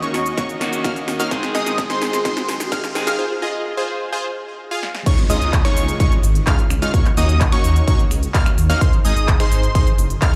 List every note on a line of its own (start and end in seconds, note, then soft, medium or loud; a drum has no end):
0.00 0.58 D#3 medium
0.00 0.58 A#3 medium
0.00 0.35 A#3 medium
0.00 0.58 C#4 medium
0.00 0.35 C#4 medium
0.00 0.35 D#4 medium
0.00 0.59 F#4 medium
0.00 1.29 F#4 medium
0.00 0.35 F#4 medium
0.00 0.35 C#5 medium
0.00 3.15 D#5 medium
0.00 1.28 C#6 medium
0.00 0.35 C#6 loud
0.00 closed hi-hat soft
0.00 riser medium
0.00 shaker soft
0.14 0.31 D#2 medium
0.14 snare medium
0.14 open hi-hat loud
0.26 closed hi-hat soft
0.26 shaker medium
0.38 0.50 A#3 loud
0.38 0.50 C#4 medium
0.38 0.50 D#4 medium
0.38 0.50 F#4 medium
0.38 0.50 C#5 loud
0.38 0.50 C#6 loud
0.38 kick loud
0.38 snare medium
0.38 closed hi-hat medium
0.38 shaker medium
0.49 closed hi-hat soft
0.49 shaker soft
0.60 0.78 C#2 loud
0.60 1.28 D#3 medium
0.60 1.28 A#3 medium
0.60 1.29 C#4 medium
0.60 1.29 F#4 loud
0.60 snare medium
0.60 open hi-hat loud
0.73 closed hi-hat soft
0.73 shaker medium
0.84 0.96 A#3 medium
0.84 0.96 C#4 medium
0.84 0.96 D#4 medium
0.84 0.96 F#4 medium
0.84 0.96 F5 loud
0.84 0.96 F6 loud
0.84 kick loud
0.84 snare medium
0.84 closed hi-hat medium
0.84 shaker medium
0.96 closed hi-hat soft
0.96 shaker soft
1.08 1.25 D#2 loud
1.08 snare medium
1.08 open hi-hat loud
1.20 1.30 A#3 medium
1.20 1.30 C#4 medium
1.20 1.30 D#4 medium
1.20 1.30 F#4 medium
1.20 1.30 F5 medium
1.20 1.30 F6 medium
1.20 closed hi-hat soft
1.20 shaker medium
1.30 2.92 D#3 loud
1.30 2.92 G#3 medium
1.30 2.93 C4 medium
1.30 1.43 D#4 medium
1.30 1.43 G#4 medium
1.30 3.17 G#4 medium
1.30 2.93 G#4 loud
1.30 1.43 C5 medium
1.30 1.43 C6 medium
1.30 3.17 C6 medium
1.30 kick loud
1.30 snare medium
1.30 closed hi-hat loud
1.30 shaker medium
1.43 snare medium
1.43 closed hi-hat soft
1.43 shaker soft
1.55 1.63 G#1 loud
1.55 1.87 D#4 medium
1.55 1.87 G#4 medium
1.55 1.87 D#5 loud
1.55 1.87 D#6 loud
1.55 snare medium
1.55 open hi-hat loud
1.66 1.83 G#1 medium
1.66 snare medium
1.66 closed hi-hat soft
1.66 shaker medium
1.78 kick loud
1.78 snare medium
1.78 closed hi-hat loud
1.78 shaker medium
1.90 2.22 D#4 medium
1.90 2.22 G#4 medium
1.90 2.22 C5 loud
1.90 2.22 C6 loud
1.90 snare medium
1.90 closed hi-hat soft
1.90 shaker soft
2.02 2.18 G#1 medium
2.02 snare loud
2.02 open hi-hat loud
2.13 snare medium
2.13 closed hi-hat soft
2.13 shaker medium
2.25 2.37 D#4 medium
2.25 2.37 G#4 medium
2.25 2.37 C5 loud
2.25 2.37 C6 loud
2.25 kick loud
2.25 snare medium
2.25 closed hi-hat medium
2.25 shaker medium
2.37 snare medium
2.37 closed hi-hat soft
2.37 shaker soft
2.49 2.65 F#1 loud
2.49 snare loud
2.49 open hi-hat loud
2.60 snare medium
2.60 closed hi-hat soft
2.60 shaker medium
2.72 2.84 D#4 medium
2.72 2.84 G#4 medium
2.72 2.84 F5 loud
2.72 2.84 F6 loud
2.72 kick loud
2.72 snare loud
2.72 closed hi-hat loud
2.72 shaker medium
2.84 snare medium
2.84 closed hi-hat soft
2.84 shaker soft
2.95 3.12 G#1 loud
2.95 3.16 D#3 medium
2.95 3.16 G#3 medium
2.95 3.16 C4 medium
2.95 3.16 G#4 medium
2.95 snare loud
2.95 open hi-hat loud
3.07 3.17 D#4 medium
3.07 3.17 G#4 medium
3.07 3.17 F5 medium
3.07 3.17 F6 medium
3.07 snare medium
3.07 closed hi-hat soft
3.07 shaker medium
3.19 3.31 F4 medium
3.19 3.31 G#4 medium
3.19 3.31 C5 medium
3.42 3.75 F4 medium
3.42 3.75 G#4 medium
3.42 3.75 D#5 loud
3.77 4.10 F4 medium
3.77 4.10 G#4 medium
3.77 4.10 C5 loud
4.12 4.24 F4 loud
4.12 4.24 G#4 medium
4.12 4.24 C5 loud
4.71 4.83 F4 medium
4.71 4.83 G#4 medium
4.71 4.83 F5 loud
4.83 snare medium
4.95 snare medium
5.06 5.18 G#3 medium
5.06 5.18 C#4 medium
5.06 5.18 D#4 medium
5.06 5.18 F4 medium
5.06 5.18 C#5 medium
5.06 5.18 C#6 medium
5.06 kick loud
5.06 closed hi-hat loud
5.06 crash loud
5.06 downlifter medium
5.06 shaker soft
5.18 closed hi-hat soft
5.30 5.38 C#2 loud
5.30 5.62 G#3 medium
5.30 5.62 C#4 medium
5.30 5.62 D#4 medium
5.30 5.62 F4 medium
5.30 5.62 D#5 loud
5.30 5.62 D#6 loud
5.30 open hi-hat loud
5.30 shaker medium
5.41 5.58 C#2 medium
5.41 closed hi-hat soft
5.41 shaker soft
5.53 kick loud
5.53 clap loud
5.53 closed hi-hat medium
5.53 shaker soft
5.65 5.97 G#3 medium
5.65 5.97 C#4 medium
5.65 5.97 D#4 medium
5.65 5.97 F4 medium
5.65 5.97 C#5 loud
5.65 5.97 C#6 loud
5.65 finger snap medium
5.65 closed hi-hat soft
5.65 shaker soft
5.77 5.93 C#2 medium
5.77 open hi-hat loud
5.77 shaker medium
5.88 closed hi-hat soft
5.88 shaker soft
6.00 6.12 G#3 medium
6.00 6.12 C#4 medium
6.00 6.12 D#4 medium
6.00 6.12 F4 medium
6.00 6.12 C#5 loud
6.00 6.12 C#6 loud
6.00 kick loud
6.00 closed hi-hat loud
6.00 shaker soft
6.12 closed hi-hat soft
6.12 shaker soft
6.23 6.40 G#1 loud
6.23 open hi-hat loud
6.23 shaker medium
6.35 closed hi-hat soft
6.35 shaker soft
6.47 6.59 G#3 medium
6.47 6.59 C#4 medium
6.47 6.59 D#4 medium
6.47 6.59 F4 medium
6.47 6.59 F5 loud
6.47 6.59 F6 loud
6.47 kick loud
6.47 clap loud
6.47 closed hi-hat loud
6.47 shaker soft
6.59 closed hi-hat soft
6.59 shaker soft
6.70 6.87 C#2 loud
6.70 finger snap medium
6.70 open hi-hat loud
6.70 shaker medium
6.82 6.92 G#3 medium
6.82 6.92 C#4 medium
6.82 6.92 D#4 medium
6.82 6.92 F4 medium
6.82 6.92 F5 medium
6.82 6.92 F6 medium
6.82 closed hi-hat soft
6.82 shaker soft
6.94 7.06 A#3 medium
6.94 7.06 C#4 medium
6.94 7.06 D#4 medium
6.94 7.06 F#4 medium
6.94 7.06 C#5 medium
6.94 7.06 C#6 medium
6.94 kick loud
6.94 closed hi-hat loud
6.94 shaker soft
7.05 clap soft
7.05 closed hi-hat soft
7.05 shaker soft
7.17 7.26 D#2 loud
7.17 7.50 A#3 medium
7.17 7.50 C#4 medium
7.17 7.50 D#4 medium
7.17 7.50 F#4 medium
7.17 7.50 D#5 loud
7.17 7.50 D#6 loud
7.17 open hi-hat loud
7.17 shaker medium
7.29 7.46 D#2 medium
7.29 closed hi-hat soft
7.29 shaker soft
7.41 kick loud
7.41 clap loud
7.41 closed hi-hat medium
7.41 shaker soft
7.52 7.85 A#3 medium
7.52 7.85 C#4 medium
7.52 7.85 D#4 medium
7.52 7.85 F#4 medium
7.52 7.85 C#5 medium
7.52 7.85 C#6 loud
7.52 finger snap medium
7.52 closed hi-hat soft
7.52 shaker soft
7.64 7.81 D#2 medium
7.64 open hi-hat loud
7.64 shaker medium
7.76 closed hi-hat soft
7.76 shaker soft
7.88 8.00 A#3 medium
7.88 8.00 C#4 medium
7.88 8.00 D#4 medium
7.88 8.00 F#4 medium
7.88 8.00 C#5 loud
7.88 8.00 C#6 loud
7.88 kick loud
7.88 closed hi-hat medium
7.88 shaker soft
7.99 closed hi-hat soft
7.99 shaker soft
8.11 8.28 C#2 loud
8.11 finger snap medium
8.11 open hi-hat loud
8.11 shaker medium
8.23 closed hi-hat soft
8.23 shaker soft
8.34 8.46 A#3 medium
8.34 8.46 C#4 medium
8.34 8.46 D#4 medium
8.34 8.46 F#4 medium
8.34 8.46 F5 loud
8.34 8.46 F6 loud
8.34 kick loud
8.34 clap loud
8.34 closed hi-hat loud
8.34 shaker soft
8.46 finger snap medium
8.46 closed hi-hat soft
8.46 shaker soft
8.58 8.75 D#2 loud
8.58 open hi-hat loud
8.58 shaker medium
8.70 8.80 A#3 medium
8.70 8.80 C#4 medium
8.70 8.80 D#4 medium
8.70 8.80 F#4 medium
8.70 8.80 F5 medium
8.70 8.80 F6 medium
8.70 closed hi-hat soft
8.70 shaker soft
8.81 8.93 G#4 medium
8.81 8.93 C5 medium
8.81 8.93 C6 medium
8.81 kick loud
8.81 closed hi-hat medium
8.81 shaker soft
8.93 closed hi-hat soft
9.05 9.13 G#1 loud
9.05 9.37 D#4 medium
9.05 9.37 G#4 medium
9.05 9.37 D#5 loud
9.05 9.37 D#6 loud
9.05 open hi-hat loud
9.05 shaker medium
9.16 9.33 G#1 medium
9.16 closed hi-hat soft
9.16 shaker soft
9.28 kick loud
9.28 clap loud
9.28 closed hi-hat medium
9.28 shaker soft
9.40 9.72 D#4 medium
9.40 9.72 G#4 medium
9.40 9.72 C5 loud
9.40 9.72 C6 loud
9.40 finger snap medium
9.40 closed hi-hat soft
9.40 shaker soft
9.52 9.68 G#1 medium
9.52 open hi-hat loud
9.52 shaker medium
9.63 closed hi-hat soft
9.63 shaker soft
9.75 9.87 D#4 loud
9.75 9.87 G#4 medium
9.75 9.87 C5 loud
9.75 9.87 C6 loud
9.75 kick loud
9.75 closed hi-hat medium
9.75 shaker soft
9.87 closed hi-hat soft
9.87 shaker soft
9.98 10.15 F#1 loud
9.98 open hi-hat loud
9.98 shaker medium
10.10 closed hi-hat soft
10.10 shaker soft
10.22 10.34 D#4 medium
10.22 10.34 G#4 medium
10.22 10.34 F5 loud
10.22 10.34 F6 loud
10.22 kick loud
10.22 clap loud
10.22 closed hi-hat medium
10.22 shaker soft